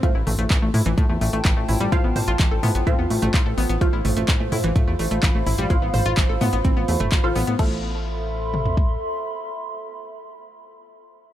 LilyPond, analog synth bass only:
\new Staff \with { instrumentName = "Analog synth bass" } { \clef bass \time 4/4 \key a \minor \tempo 4 = 127 a,,16 a,,16 a,,16 a,,16 a,,16 a,,16 a,16 a,,16 a,16 e,16 a,,16 a,,16 a,,16 a,,16 a,,16 a,,16 | a,,16 a,,16 a,,16 a,,16 a,,16 a,,16 a,16 a,,16 a,16 e,16 a,,16 a,,16 a,,16 a,,16 a,,16 a,,16 | a,,16 a,,16 a,,16 a,,16 a,,16 a,,16 a,16 a,,16 a,16 e,16 a,,16 a,,16 a,,16 a,,16 a,,16 a,,16 | a,,16 a,,16 a,,16 a,,16 a,,16 a,,16 a,16 a,,16 a,,16 a,,16 e,16 g,,16 a,,16 a,,16 a,,16 a,,16 |
a,,2. r4 | r1 | }